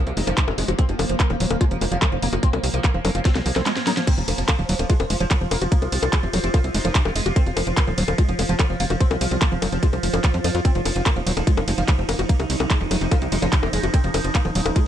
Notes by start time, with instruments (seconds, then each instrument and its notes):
Already playing: synth drone F3 A#3
0.07 analog synth bass C2, oud C3, closed hi-hat
0.17 analog synth bass F1, oud C3, acid bass G#3, wobble bass D#4, open hi-hat
0.27 analog synth bass F1, oud F3, acid bass F3, closed hi-hat, high bongo
0.37 oud C3, acid bass F3, kick, clap, closed hi-hat
0.48 analog synth bass F1, oud C3, high bongo
0.58 analog synth bass F1, oud G#3, open hi-hat
0.68 analog synth bass F1, oud C3, acid bass F#4, closed hi-hat
0.79 acid bass F3, oud C4, kick, closed hi-hat, high bongo
0.89 analog synth bass F1, oud F3, closed hi-hat
0.99 analog synth bass F1, oud F3, open hi-hat, high bongo
1.09 analog synth bass F1, oud F3, closed hi-hat
1.20 acid bass F3, oud A#3, kick, clap, closed hi-hat
1.30 analog synth bass D#1, oud F3, acid bass F3, high bongo
1.40 analog synth bass D#1, oud F3, acid bass F#3, open hi-hat
1.50 analog synth bass D#1, oud F3, closed hi-hat, high bongo
1.61 oud G#3, acid bass F4, kick, closed hi-hat
1.71 analog synth bass F1, oud F3, closed hi-hat
1.81 analog synth bass F1, oud F3, acid bass G#3, open hi-hat, high bongo
1.92 analog synth bass F1, acid bass F3, oud F3, closed hi-hat
2.02 acid bass F3, oud F3, kick, clap, closed hi-hat, high bongo
2.12 analog synth bass F1, oud F3
2.22 analog synth bass F1, oud A#3, open hi-hat
2.33 analog synth bass F1, oud F3, acid bass F#4, closed hi-hat, high bongo
2.43 acid bass F3, oud C4, kick, closed hi-hat
2.53 analog synth bass C2, oud F3, closed hi-hat, high bongo
2.64 analog synth bass C2, oud F3, open hi-hat
2.74 analog synth bass C2, oud F3, closed hi-hat
2.84 acid bass F3, oud A#3, kick, clap, closed hi-hat, high bongo
2.94 analog synth bass F1, oud F3, acid bass F3
3.05 analog synth bass F1, oud F3, acid bass F#3, open hi-hat, high bongo
3.15 analog synth bass F1, oud F3, wobble bass C4, closed hi-hat
3.25 wobble bass C4, oud C4, acid bass F4, kick, snare, closed hi-hat
3.35 analog synth bass C2, oud F3, snare, closed hi-hat, high bongo
3.46 analog synth bass C2, acid bass F3, oud F3, open hi-hat
3.56 analog synth bass C2, acid bass F3, oud C4, snare, closed hi-hat, high bongo
3.66 oud F3, acid bass G#3, snare, clap, closed hi-hat
3.77 oud F3, snare, closed hi-hat
3.87 acid bass F#3, oud D#4, snare, open hi-hat, high bongo
3.97 acid bass F3, oud F3, snare, closed hi-hat
4.07 synth drone F3 F4, acid bass F3, oud C4, kick, closed hi-hat, crash, ride
4.18 analog synth bass F1, oud F3, closed hi-hat
4.28 analog synth bass F1, oud F3, open hi-hat, ride, high bongo
4.38 analog synth bass F1, oud F3, closed hi-hat
4.48 acid bass F3, oud A#3, kick, clap, closed hi-hat, ride, high bongo
4.59 analog synth bass D#1, oud F3, acid bass F3
4.69 analog synth bass D#1, oud F3, acid bass F#3, open hi-hat, ride
4.79 analog synth bass D#1, oud F3, closed hi-hat, high bongo
4.90 oud G#3, acid bass F4, kick, closed hi-hat, ride
5.00 analog synth bass F1, oud F3, closed hi-hat, high bongo
5.10 analog synth bass F1, oud F3, acid bass G#3, open hi-hat, ride
5.20 analog synth bass F1, acid bass F3, oud F3, closed hi-hat
5.31 acid bass F3, oud F3, kick, clap, closed hi-hat, ride, high bongo
5.41 analog synth bass F1, oud F3
5.51 analog synth bass F1, oud A#3, open hi-hat, ride, high bongo
5.61 analog synth bass F1, oud F3, acid bass F#4, closed hi-hat
5.72 acid bass F3, oud A#3, kick, closed hi-hat, ride
5.82 analog synth bass C2, oud C3, closed hi-hat, high bongo
5.92 analog synth bass C2, oud C3, open hi-hat, ride
6.03 analog synth bass C2, oud C3, closed hi-hat, high bongo
6.13 acid bass F3, oud G#3, kick, clap, closed hi-hat, ride
6.23 analog synth bass F1, oud C3, acid bass F3
6.33 analog synth bass F1, oud C3, acid bass F#3, open hi-hat, ride, high bongo
6.44 analog synth bass F1, oud C3, wobble bass C4, closed hi-hat
6.54 oud F3, wobble bass C4, acid bass F4, kick, closed hi-hat, ride, high bongo
6.64 analog synth bass C2, oud C3, closed hi-hat
6.74 analog synth bass F1, oud C3, acid bass G#3, wobble bass D#4, open hi-hat, ride
6.85 analog synth bass F1, acid bass F3, oud F3, closed hi-hat, high bongo
6.95 oud C3, acid bass F3, kick, clap, closed hi-hat, ride
7.05 analog synth bass F1, oud C3, high bongo
7.16 analog synth bass F1, oud G#3, open hi-hat, ride
7.26 analog synth bass F1, oud C3, acid bass F#4, closed hi-hat
7.36 acid bass F3, oud C4, kick, closed hi-hat, ride, high bongo
7.46 analog synth bass F1, oud F3, closed hi-hat
7.57 analog synth bass F1, oud F3, open hi-hat, ride, high bongo
7.67 analog synth bass F1, oud F3, closed hi-hat
7.77 acid bass F3, oud A#3, kick, clap, closed hi-hat, ride
7.87 analog synth bass D#1, oud F3, acid bass F3, high bongo
7.98 analog synth bass D#1, oud F3, acid bass F#3, open hi-hat, ride
8.08 analog synth bass D#1, oud F3, closed hi-hat, high bongo
8.18 oud G#3, acid bass F4, kick, closed hi-hat, ride
8.29 analog synth bass F1, oud F3, closed hi-hat
8.39 analog synth bass F1, oud F3, acid bass G#3, open hi-hat, ride, high bongo
8.49 analog synth bass F1, acid bass F3, oud F3, closed hi-hat
8.59 acid bass F3, oud F3, kick, clap, closed hi-hat, ride, high bongo
8.70 analog synth bass F1, oud F3
8.80 analog synth bass F1, oud A#3, open hi-hat, ride
8.90 analog synth bass F1, oud F3, acid bass F#4, closed hi-hat, high bongo
9.00 acid bass F3, oud C4, kick, closed hi-hat, ride
9.11 analog synth bass C2, oud F3, closed hi-hat, high bongo
9.21 analog synth bass C2, oud F3, open hi-hat, ride
9.31 analog synth bass C2, oud F3, closed hi-hat
9.42 acid bass F3, oud A#3, kick, clap, closed hi-hat, ride, high bongo
9.52 analog synth bass F1, oud F3, acid bass F3
9.62 analog synth bass F1, oud F3, acid bass F#3, open hi-hat, ride, high bongo
9.72 analog synth bass F1, oud F3, wobble bass C4, closed hi-hat
9.83 oud G#3, wobble bass C4, acid bass F4, kick, closed hi-hat, ride
9.93 analog synth bass C2, oud F3, closed hi-hat, high bongo
10.03 analog synth bass F1, acid bass F3, oud F3, open hi-hat, ride
10.13 analog synth bass F1, oud F3, acid bass F3, closed hi-hat, high bongo
10.24 oud F3, acid bass F3, kick, clap, closed hi-hat, ride
10.34 analog synth bass F2, oud F3, acid bass F3, closed hi-hat
10.44 analog synth bass F2, oud F3, open hi-hat, ride, high bongo
10.55 analog synth bass F2, oud F3, acid bass F4, closed hi-hat
10.65 acid bass F3, oud C4, synth drone D#4, kick, closed hi-hat, ride
10.75 analog synth bass F1, oud F3, closed hi-hat
10.85 analog synth bass F1, oud F3, open hi-hat, ride, high bongo
10.96 analog synth bass F1, oud F3, closed hi-hat
11.06 acid bass F3, oud A#3, kick, clap, closed hi-hat, ride, high bongo
11.16 analog synth bass D#1, acid bass F3, oud F3
11.27 analog synth bass D#1, oud F3, acid bass F#3, open hi-hat, ride
11.37 analog synth bass D#1, oud F3, closed hi-hat, high bongo
11.47 oud G#3, acid bass F4, kick, closed hi-hat, ride
11.57 analog synth bass F1, oud F3, closed hi-hat, high bongo
11.68 analog synth bass F1, oud F3, acid bass G#3, open hi-hat, ride
11.78 analog synth bass F1, oud F3, acid bass F3, closed hi-hat
11.88 oud F3, acid bass F3, kick, clap, closed hi-hat, ride, high bongo
11.98 analog synth bass F1, oud F3
12.09 analog synth bass F1, oud A#3, open hi-hat, ride, high bongo
12.19 analog synth bass F1, oud F3, acid bass F#4, closed hi-hat
12.29 acid bass F3, oud A#3, kick, closed hi-hat, ride
12.40 analog synth bass C2, oud C3, closed hi-hat, high bongo
12.50 analog synth bass C2, oud C3, open hi-hat, ride
12.60 analog synth bass C2, oud C3, closed hi-hat, high bongo
12.70 acid bass F3, oud G#3, kick, clap, closed hi-hat, ride
12.81 analog synth bass F1, oud C3, acid bass F3
12.91 analog synth bass F1, oud C3, acid bass F#3, open hi-hat, ride, high bongo
13.01 analog synth bass F1, oud C3, wobble bass C4, closed hi-hat
13.11 oud F3, wobble bass C4, acid bass F4, kick, closed hi-hat, ride, high bongo
13.22 analog synth bass C2, oud C3, closed hi-hat
13.32 analog synth bass F1, oud C3, acid bass G#3, wobble bass D#4, open hi-hat, ride
13.42 analog synth bass F1, acid bass F3, oud F3, closed hi-hat, high bongo
13.53 oud C3, acid bass F3, kick, clap, closed hi-hat, ride
13.63 analog synth bass F1, oud C3, high bongo
13.73 analog synth bass F1, oud G#3, open hi-hat, ride
13.83 analog synth bass F1, oud C3, acid bass F#4, closed hi-hat
13.94 acid bass F3, oud C4, kick, closed hi-hat, ride, high bongo
14.04 analog synth bass F1, oud F3, closed hi-hat
14.14 analog synth bass F1, oud F3, open hi-hat, ride, high bongo
14.24 analog synth bass F1, oud F3, closed hi-hat
14.35 acid bass F3, oud A#3, kick, clap, closed hi-hat, ride
14.45 analog synth bass D#1, acid bass F3, oud F3, high bongo
14.55 analog synth bass D#1, oud F3, acid bass F#3, open hi-hat, ride
14.66 analog synth bass D#1, oud F3, closed hi-hat, high bongo
14.76 oud G#3, acid bass F4, kick, closed hi-hat, ride